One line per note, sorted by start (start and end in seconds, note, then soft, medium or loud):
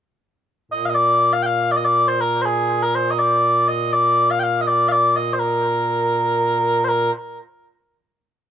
0.72 7.11 A#2 medium
0.72 0.85 D#5 medium
0.85 0.89 F5 medium
0.89 0.95 D#5 medium
0.95 1.33 D5 loud
1.33 1.43 F5 medium
1.43 1.71 F5 medium
1.43 1.46 G5 medium
1.71 1.77 D5 loud
1.77 1.85 D#5 medium
1.85 2.08 D5 loud
2.08 2.21 C5 medium
2.21 2.42 A#4 medium
2.42 2.83 G#4 medium
2.42 2.46 C5 medium
2.83 2.95 A#4 medium
2.95 3.11 C5 medium
3.11 3.19 D#5 medium
3.19 3.68 D5 medium
3.68 3.93 D#5 medium
3.93 4.31 D5 medium
4.31 4.39 F5 medium
4.39 4.61 F5 medium
4.39 4.43 G5 medium
4.61 4.67 D#5 medium
4.67 4.89 D5 medium
4.89 5.16 D5 medium
4.89 4.92 F5 medium
5.16 5.33 D#5 medium
5.33 5.39 C5 medium
5.39 6.84 A#4 medium
6.84 6.89 C5 medium
6.89 7.11 A#4 medium